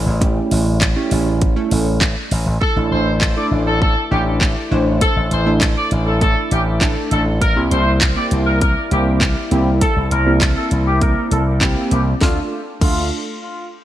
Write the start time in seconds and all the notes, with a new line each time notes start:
Already playing: C#3 G3 A3 E4
0.06 A1
0.21 A3 C#4 E4 G4, kick, closed hi-hat
0.51 A1, open hi-hat
0.81 kick, clap, closed hi-hat
0.96 A3 C#4 E4 G4
1.11 A1, open hi-hat
1.41 kick, closed hi-hat
1.56 A3 C#4 E4 A4
1.71 A1, open hi-hat
2.01 kick, clap, closed hi-hat
2.31 A1, open hi-hat
2.46 A1
2.61 D3 E3 A3 E4 A4, kick
2.76 A1 A3 D4 E4 A4
2.91 A1 C5
3.21 kick, clap
3.36 A3 D4 E4 A4 D5
3.51 A1
3.66 A4
3.82 A4, kick
4.11 A1 A3 D4 E4 G4
4.41 kick, clap
4.71 A1 A3 D4 E4 C5
5.01 A4, kick, closed hi-hat
5.16 A1
5.31 A1 C5, closed hi-hat
5.46 A3 D4 E4 A4
5.61 kick, clap, closed hi-hat
5.76 D5
5.91 A1, closed hi-hat
6.07 A4
6.21 A3 D4 E4 A4, kick, closed hi-hat
6.51 A1 G4, closed hi-hat
6.81 A3 D4 E4 A4, kick, clap, closed hi-hat
7.11 A1 A4, closed hi-hat
7.41 C3 G3 A#3 E4 A#4, kick, closed hi-hat
7.56 C2 A#3 C4 E4 G4
7.71 C2 C5, closed hi-hat
8.01 kick, clap, closed hi-hat
8.16 A#3 C4 E4 G4 D5
8.31 C2, closed hi-hat
8.47 A#4
8.61 A#4, kick, closed hi-hat
8.91 C2 A#3 C4 E4 G4, closed hi-hat
9.21 kick, clap, closed hi-hat
9.51 C2 A#3 C4 E4 G4, closed hi-hat
9.81 A4, kick, closed hi-hat
9.96 C2
10.11 C2 A#4, closed hi-hat
10.26 A#3 C4 E4 G4
10.41 kick, clap, closed hi-hat
10.57 A4
10.71 C2, closed hi-hat
10.87 G4
11.01 A#3 C4 E4 A#4, kick, closed hi-hat
11.31 C2 A4, closed hi-hat
11.61 A#3 C4 E4 G4, kick, clap, closed hi-hat
11.91 C2 G4, closed hi-hat
12.21 D2 D3 F3 A3 D4 F4 A4, kick, snare
12.81 D2 A3 D4 F4 A4, kick, crash